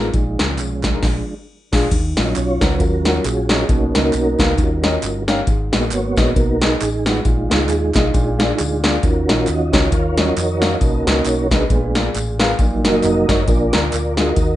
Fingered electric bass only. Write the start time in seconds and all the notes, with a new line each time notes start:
Already playing: A1
0.14 A#1
0.40 C#2
0.60 B1
1.03 A#1
1.73 A#1
1.91 D#2
2.18 A#1
2.37 B1
2.62 C#2
2.80 D#2
3.25 A#1
3.69 B1
3.95 C#2
4.14 B1
4.39 C#2
4.58 D#2
5.03 G1
5.47 G#1
5.73 A#1
5.92 G#1
6.17 A#1
6.36 B1
6.81 A1
7.25 A#1
7.51 C#2
7.70 D#2
7.95 B1
8.14 A#1
8.60 D2
9.03 D#2
9.29 A#1
9.48 D#2
9.73 C#2
9.92 D#2
10.37 F2
10.81 B1
11.06 C#2
11.25 B1
11.70 A#1
12.15 A1
12.59 A#1
12.85 F#1
13.04 F1
13.29 F#1
13.48 A#1
13.74 D2
13.93 D2
14.37 D#2